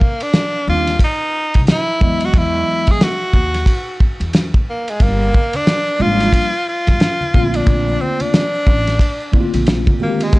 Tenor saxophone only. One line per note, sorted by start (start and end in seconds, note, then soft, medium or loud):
0.00 0.24 A#3 medium
0.22 0.68 D4 loud
0.69 0.99 F4 loud
1.04 1.65 D#4 loud
1.71 2.27 E4 loud
2.25 2.39 F#4 medium
2.38 2.92 E4 loud
2.91 3.05 G#4 loud
3.03 4.02 F#4 loud
4.70 4.92 A#3 medium
4.90 5.04 G#3 medium
5.02 5.57 A#3 medium
5.56 6.03 D4 loud
6.02 6.68 F4 loud
6.68 7.57 F4 loud
7.56 8.03 D4 loud
8.01 8.23 C4 medium
8.21 9.54 D4 loud
10.02 10.25 A#3 medium
10.24 10.39 G#3 medium